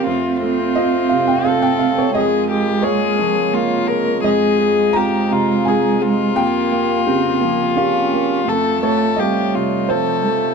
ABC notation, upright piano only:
X:1
M:3/4
L:1/16
Q:1/4=85
K:Fm
V:1 name="Upright piano"
z4 e2 f g f g f d | e4 d6 z2 | e4 b4 a4 | g8 f4 |
z2 d2 e4 c4 |]
V:2 name="Upright piano"
F,,2 =A,2 [CF]2 C,2 [CF]2 A,2 | F,,2 A,2 [B,F]2 F,2 [B,F]2 A,2 | F,,2 A,2 [CF]2 C,2 [CF]2 A,2 | F,,2 B,2 [D,G]2 F,2 [DG]2 B,2 |
F,,2 =A,2 [CF]2 C,2 [CF]2 A,2 |]